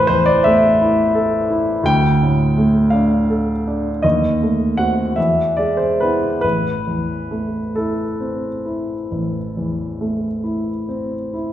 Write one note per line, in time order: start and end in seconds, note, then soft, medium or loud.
0.00 1.85 A1 medium
0.00 1.90 B4 medium
0.00 0.07 C5 medium
0.07 0.65 E2 soft
0.07 0.25 C5 medium
0.26 0.43 D5 medium
0.44 1.01 A3 soft
0.44 1.88 E5 medium
0.81 1.37 E4 soft
1.15 1.73 A4 soft
1.50 1.87 E4 soft
1.83 3.98 D2 medium
1.83 2.93 G5 medium
2.23 2.80 A2 soft
2.58 3.15 A3 soft
2.90 3.52 D4 soft
2.90 4.02 F5 medium
3.30 3.89 A4 soft
3.67 4.04 D4 soft
4.02 5.13 D#2 soft
4.02 4.77 D#5 medium
4.42 5.02 A3 soft
4.77 5.13 C4 soft
4.77 5.14 F#4 soft
4.77 5.17 F#5 medium
5.16 6.40 E2 soft
5.16 5.57 E5 medium
5.57 6.26 G#3 soft
5.57 5.78 D5 medium
5.77 5.99 C5 medium
6.00 6.40 B3 soft
6.00 6.41 E4 soft
6.00 6.40 B4 medium
6.41 9.07 A1 soft
6.41 7.75 B4 medium
6.87 7.58 E2 soft
7.31 8.02 A3 soft
7.75 8.48 E4 soft
7.75 11.33 A4 soft
8.20 8.93 C4 soft
8.65 9.38 E4 soft
9.11 11.53 A1 soft
9.57 10.27 E2 soft
10.01 10.70 A3 soft
10.44 11.15 E4 soft
10.89 11.53 C4 soft
11.34 11.53 E4 soft